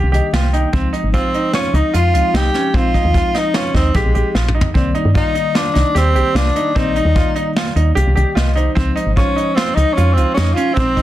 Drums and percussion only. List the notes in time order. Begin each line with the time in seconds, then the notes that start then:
0.14 closed hi-hat
0.34 snare, closed hi-hat
0.54 closed hi-hat
0.73 kick, closed hi-hat
0.93 closed hi-hat
1.14 kick, closed hi-hat
1.34 closed hi-hat
1.53 snare, closed hi-hat
1.74 closed hi-hat
1.94 closed hi-hat
2.15 closed hi-hat
2.35 snare, closed hi-hat
2.54 snare, closed hi-hat
2.74 kick, closed hi-hat
2.94 kick, closed hi-hat
3.14 kick, closed hi-hat
3.35 snare, closed hi-hat
3.54 snare, closed hi-hat
3.75 kick, snare, closed hi-hat
3.94 kick, closed hi-hat
4.15 closed hi-hat
4.35 snare
4.48 mid tom
4.61 floor tom
4.75 kick, closed hi-hat
4.95 closed hi-hat
5.15 kick, closed hi-hat
5.35 closed hi-hat
5.55 snare, closed hi-hat
5.75 snare, closed hi-hat
5.96 snare, closed hi-hat
6.16 closed hi-hat
6.36 snare, closed hi-hat
6.56 closed hi-hat
6.76 kick, closed hi-hat
6.96 closed hi-hat
7.16 kick, closed hi-hat
7.36 closed hi-hat
7.56 snare, closed hi-hat
7.76 closed hi-hat
7.97 closed hi-hat
8.17 closed hi-hat
8.37 snare, closed hi-hat
8.57 closed hi-hat
8.77 kick, closed hi-hat
8.97 closed hi-hat
9.17 kick, closed hi-hat
9.38 closed hi-hat
9.57 snare, closed hi-hat
9.77 closed hi-hat
9.98 closed hi-hat
10.17 closed hi-hat
10.37 snare, closed hi-hat
10.57 closed hi-hat
10.77 kick, closed hi-hat
10.97 kick, closed hi-hat